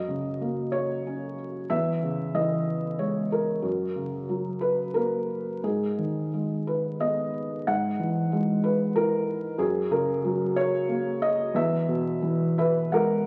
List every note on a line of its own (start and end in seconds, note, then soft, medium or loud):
0.00 1.66 F#2 medium
0.00 0.37 D#5 medium
0.08 1.35 C#3 soft
0.41 1.67 A#3 medium
0.72 1.34 C#5 medium
1.06 1.69 C#4 soft
1.70 3.59 E2 medium
1.70 2.36 E5 loud
2.03 3.27 C#3 soft
2.34 3.59 E3 medium
2.34 3.00 D#5 medium
2.99 3.61 G#3 soft
2.99 3.29 C#5 medium
3.32 3.93 A#4 medium
3.62 5.60 F#2 medium
3.96 5.26 C#3 soft
4.29 5.60 F#3 soft
4.61 4.93 B4 medium
4.94 5.62 A#3 soft
4.94 5.59 A#4 medium
5.64 7.63 G#2 soft
5.64 6.28 G#4 medium
5.98 7.30 D#3 soft
6.33 7.64 G#3 soft
6.67 7.02 B4 medium
7.00 7.65 B3 soft
7.00 7.70 D#5 medium
7.67 9.56 G#2 medium
7.67 8.29 F#5 medium
7.99 9.24 E3 medium
8.32 9.56 G#3 medium
8.64 8.97 B4 medium
8.96 9.58 E4 medium
8.96 9.62 A#4 medium
9.58 11.51 F#2 medium
9.58 9.92 G#4 medium
9.91 11.18 C#3 medium
9.91 10.59 A#4 medium
10.24 11.52 F#3 medium
10.56 11.24 C#5 loud
10.89 11.53 A#3 medium
11.22 11.57 D#5 loud
11.54 13.27 E2 medium
11.54 12.56 E5 medium
11.89 13.24 B2 medium
12.22 13.27 E3 medium
12.58 12.95 B4 medium
12.58 12.91 E5 medium
12.92 13.27 G#3 medium
12.92 13.27 A#4 medium
12.92 13.26 F#5 medium